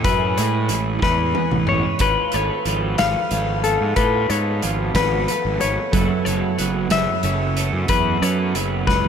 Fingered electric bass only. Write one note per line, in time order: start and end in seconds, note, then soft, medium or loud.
0.05 0.35 F#2 medium
0.38 0.68 A2 loud
0.70 1.00 A1 medium
1.02 1.33 E2 medium
1.53 1.67 A1 medium
1.69 1.84 A1 medium
2.00 2.16 G#1 loud
2.34 2.49 G#1 medium
2.65 2.96 G#1 medium
2.99 3.14 G#1 medium
3.31 3.77 G#1 loud
3.81 3.96 G#2 medium
3.97 4.27 A2 loud
4.30 4.60 G#2 loud
4.63 4.93 G#1 medium
4.95 5.25 G#1 medium
5.45 5.59 G#1 loud
5.63 5.77 G#1 medium
5.94 6.08 F#1 loud
6.27 6.41 F#1 medium
6.60 6.89 F#1 medium
6.91 7.06 F#1 medium
7.23 7.69 F#1 loud
7.72 7.88 F#2 medium
7.89 8.20 E2 medium
8.22 8.52 F#2 loud
8.55 8.85 F#1 medium
8.87 9.08 C#2 medium